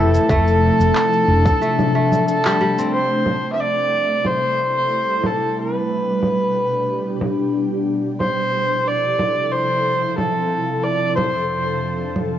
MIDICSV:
0, 0, Header, 1, 6, 480
1, 0, Start_track
1, 0, Key_signature, 0, "minor"
1, 0, Tempo, 659341
1, 215, Time_signature, 4, 2, 24, 8
1, 9018, End_track
2, 0, Start_track
2, 0, Title_t, "Kamancheh"
2, 0, Program_c, 0, 110
2, 0, Note_on_c, 0, 69, 92
2, 1654, Note_off_c, 0, 69, 0
2, 1658, Note_on_c, 0, 69, 91
2, 2107, Note_off_c, 0, 69, 0
2, 2137, Note_on_c, 0, 72, 87
2, 2539, Note_off_c, 0, 72, 0
2, 2567, Note_on_c, 0, 76, 66
2, 2622, Note_on_c, 0, 74, 97
2, 2633, Note_off_c, 0, 76, 0
2, 3107, Note_on_c, 0, 72, 98
2, 3117, Note_off_c, 0, 74, 0
2, 3828, Note_on_c, 0, 69, 80
2, 3839, Note_off_c, 0, 72, 0
2, 4068, Note_on_c, 0, 71, 78
2, 4079, Note_off_c, 0, 69, 0
2, 5501, Note_off_c, 0, 71, 0
2, 5970, Note_on_c, 0, 72, 94
2, 6457, Note_on_c, 0, 74, 90
2, 6468, Note_off_c, 0, 72, 0
2, 6926, Note_on_c, 0, 72, 93
2, 6937, Note_off_c, 0, 74, 0
2, 7403, Note_off_c, 0, 72, 0
2, 7407, Note_on_c, 0, 69, 82
2, 7886, Note_on_c, 0, 74, 90
2, 7897, Note_off_c, 0, 69, 0
2, 8117, Note_off_c, 0, 74, 0
2, 8122, Note_on_c, 0, 72, 88
2, 8819, Note_off_c, 0, 72, 0
2, 9018, End_track
3, 0, Start_track
3, 0, Title_t, "Ambient pad"
3, 0, Program_c, 1, 92
3, 0, Note_on_c, 1, 48, 89
3, 0, Note_on_c, 1, 53, 81
3, 0, Note_on_c, 1, 57, 81
3, 0, Note_on_c, 1, 64, 93
3, 196, Note_off_c, 1, 64, 0
3, 219, Note_on_c, 1, 62, 95
3, 2106, Note_off_c, 1, 57, 0
3, 2107, Note_off_c, 1, 48, 0
3, 2107, Note_off_c, 1, 53, 0
3, 2118, Note_off_c, 1, 62, 0
3, 2137, Note_on_c, 1, 55, 76
3, 2137, Note_on_c, 1, 64, 85
3, 2138, Note_on_c, 1, 48, 74
3, 2139, Note_on_c, 1, 57, 72
3, 4037, Note_off_c, 1, 48, 0
3, 4037, Note_off_c, 1, 64, 0
3, 4038, Note_off_c, 1, 57, 0
3, 4060, Note_on_c, 1, 62, 73
3, 4061, Note_on_c, 1, 47, 82
3, 4062, Note_on_c, 1, 67, 90
3, 5947, Note_off_c, 1, 55, 0
3, 5958, Note_off_c, 1, 62, 0
3, 5959, Note_off_c, 1, 47, 0
3, 5959, Note_off_c, 1, 67, 0
3, 5971, Note_on_c, 1, 48, 77
3, 5971, Note_on_c, 1, 53, 70
3, 5971, Note_on_c, 1, 69, 91
3, 5973, Note_on_c, 1, 64, 73
3, 7875, Note_off_c, 1, 64, 0
3, 7892, Note_on_c, 1, 41, 81
3, 7892, Note_on_c, 1, 62, 75
3, 9018, Note_off_c, 1, 41, 0
3, 9018, Note_off_c, 1, 48, 0
3, 9018, Note_off_c, 1, 53, 0
3, 9018, Note_off_c, 1, 62, 0
3, 9018, Note_off_c, 1, 69, 0
3, 9018, End_track
4, 0, Start_track
4, 0, Title_t, "Kora"
4, 0, Program_c, 2, 46
4, 0, Note_on_c, 2, 52, 88
4, 0, Note_on_c, 2, 57, 73
4, 0, Note_on_c, 2, 60, 71
4, 0, Note_on_c, 2, 64, 76
4, 0, Note_on_c, 2, 67, 73
4, 0, Note_on_c, 2, 69, 77
4, 215, Note_off_c, 2, 57, 0
4, 218, Note_on_c, 2, 57, 92
4, 251, Note_off_c, 2, 52, 0
4, 332, Note_off_c, 2, 60, 0
4, 650, Note_off_c, 2, 67, 0
4, 937, Note_off_c, 2, 69, 0
4, 1003, Note_off_c, 2, 64, 0
4, 1063, Note_on_c, 2, 69, 75
4, 1173, Note_off_c, 2, 57, 0
4, 1176, Note_on_c, 2, 57, 72
4, 1417, Note_off_c, 2, 57, 0
4, 1420, Note_on_c, 2, 57, 78
4, 1786, Note_on_c, 2, 55, 77
4, 1889, Note_off_c, 2, 55, 0
4, 1898, Note_on_c, 2, 55, 73
4, 2022, Note_off_c, 2, 69, 0
4, 2027, Note_on_c, 2, 60, 75
4, 2171, Note_off_c, 2, 55, 0
4, 2874, Note_off_c, 2, 57, 0
4, 3338, Note_off_c, 2, 60, 0
4, 9018, End_track
5, 0, Start_track
5, 0, Title_t, "Fretless electric bass"
5, 0, Program_c, 3, 35
5, 0, Note_on_c, 3, 29, 98
5, 125, Note_off_c, 3, 29, 0
5, 213, Note_on_c, 3, 29, 101
5, 501, Note_off_c, 3, 29, 0
5, 580, Note_on_c, 3, 29, 90
5, 650, Note_off_c, 3, 29, 0
5, 932, Note_on_c, 3, 29, 95
5, 1084, Note_off_c, 3, 29, 0
5, 9018, End_track
6, 0, Start_track
6, 0, Title_t, "Drums"
6, 103, Note_on_c, 9, 82, 65
6, 176, Note_off_c, 9, 82, 0
6, 213, Note_on_c, 9, 36, 114
6, 219, Note_on_c, 9, 82, 54
6, 286, Note_off_c, 9, 36, 0
6, 292, Note_off_c, 9, 82, 0
6, 344, Note_on_c, 9, 82, 34
6, 416, Note_off_c, 9, 82, 0
6, 586, Note_on_c, 9, 82, 67
6, 659, Note_off_c, 9, 82, 0
6, 694, Note_on_c, 9, 39, 74
6, 699, Note_on_c, 9, 82, 54
6, 767, Note_off_c, 9, 39, 0
6, 772, Note_off_c, 9, 82, 0
6, 825, Note_on_c, 9, 82, 31
6, 898, Note_off_c, 9, 82, 0
6, 1060, Note_on_c, 9, 64, 87
6, 1061, Note_on_c, 9, 36, 98
6, 1065, Note_on_c, 9, 82, 63
6, 1133, Note_off_c, 9, 64, 0
6, 1134, Note_off_c, 9, 36, 0
6, 1138, Note_off_c, 9, 82, 0
6, 1180, Note_on_c, 9, 82, 51
6, 1253, Note_off_c, 9, 82, 0
6, 1303, Note_on_c, 9, 64, 84
6, 1308, Note_on_c, 9, 82, 28
6, 1376, Note_off_c, 9, 64, 0
6, 1381, Note_off_c, 9, 82, 0
6, 1543, Note_on_c, 9, 64, 59
6, 1548, Note_on_c, 9, 82, 59
6, 1616, Note_off_c, 9, 64, 0
6, 1621, Note_off_c, 9, 82, 0
6, 1660, Note_on_c, 9, 82, 56
6, 1733, Note_off_c, 9, 82, 0
6, 1782, Note_on_c, 9, 39, 75
6, 1787, Note_on_c, 9, 82, 32
6, 1854, Note_off_c, 9, 39, 0
6, 1860, Note_off_c, 9, 82, 0
6, 2026, Note_on_c, 9, 82, 66
6, 2099, Note_off_c, 9, 82, 0
6, 2373, Note_on_c, 9, 64, 74
6, 2446, Note_off_c, 9, 64, 0
6, 3092, Note_on_c, 9, 64, 68
6, 3164, Note_off_c, 9, 64, 0
6, 3811, Note_on_c, 9, 64, 75
6, 3884, Note_off_c, 9, 64, 0
6, 4533, Note_on_c, 9, 64, 70
6, 4605, Note_off_c, 9, 64, 0
6, 5250, Note_on_c, 9, 64, 67
6, 5323, Note_off_c, 9, 64, 0
6, 5972, Note_on_c, 9, 64, 66
6, 6045, Note_off_c, 9, 64, 0
6, 6692, Note_on_c, 9, 64, 65
6, 6764, Note_off_c, 9, 64, 0
6, 7412, Note_on_c, 9, 64, 65
6, 7485, Note_off_c, 9, 64, 0
6, 8135, Note_on_c, 9, 64, 70
6, 8208, Note_off_c, 9, 64, 0
6, 8851, Note_on_c, 9, 64, 63
6, 8924, Note_off_c, 9, 64, 0
6, 9018, End_track
0, 0, End_of_file